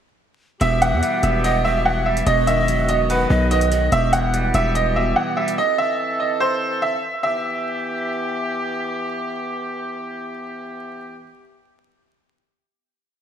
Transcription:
0.61 E1 B2 E3 B3 G4 E5, closed hi-hat
0.82 E3 F#5, closed hi-hat
0.93 E2
1.02 G3, closed hi-hat
1.23 E1 B3 E5, closed hi-hat
1.44 D#5 F#5, closed hi-hat
1.64 B2 E5
1.85 E3 F#5
2.06 G3 E5
2.17 closed hi-hat
2.26 E1 B2 D#3 F#4 D#5, closed hi-hat
2.47 D#3 E5, closed hi-hat
2.68 F#3, closed hi-hat
2.89 B3 D#5, closed hi-hat
3.09 B4 F#5, closed hi-hat
3.30 B1 B2 D#5
3.51 D#3 B4 D#5, closed hi-hat
3.61 closed hi-hat
3.71 F#3 D#5, closed hi-hat
3.92 E1 B2 E3 G4 E5, closed hi-hat
4.13 E3 F#5, closed hi-hat
4.34 G3, closed hi-hat
4.54 E1 B3 E5, closed hi-hat
4.75 D#5, closed hi-hat
4.96 B2 E5
5.16 E3 F#5
5.37 G3 E5
5.48 closed hi-hat
5.58 E3 C4 A4 D#5
5.78 E5
6.20 D#5
6.40 C5
6.82 E5
7.23 E3 B3 G4 E5

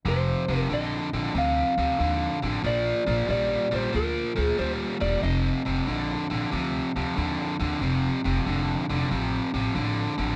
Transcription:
0.05 F1 F2 C3 C5
0.48 F1 F2 C3
0.57 A#4
0.69 A#1 F2 D3
0.74 D#5
1.13 A#1 F2 D3
1.35 D2 F2 C3 F5
1.78 D2 F2 C3
1.99 D#2 F2 D3
2.42 A1 F2 D3
2.64 A#1 A#2 F3 D5
3.07 A#1 A#2 F3
3.28 A#1 A#2 G3 D5
3.71 A#1 A#2 G3 C5
3.92 D2 A#2 F3 A#4
4.36 D2 A#2 F3
4.41 G#4
4.57 D2 A#2 G3 C5
5.00 E1 A#2 G3 D5
5.22 F1 F2 C3 D#5
5.65 F1 F2 C3
5.87 A#1 F2 D3
6.30 A#1 F2 D3
6.51 D2 F2 C3
6.96 D2 F2 C3
7.16 D#2 F2 D3
7.60 D#2 F2 D3
7.81 F1 F2 C3
8.24 F1 F2 C3
8.46 F1 F2 D3
8.89 F1 F2 D3
9.11 A1 F2 C3
9.54 A1 F2 C3
9.75 A1 F2 D3
10.18 A1 F2 D3

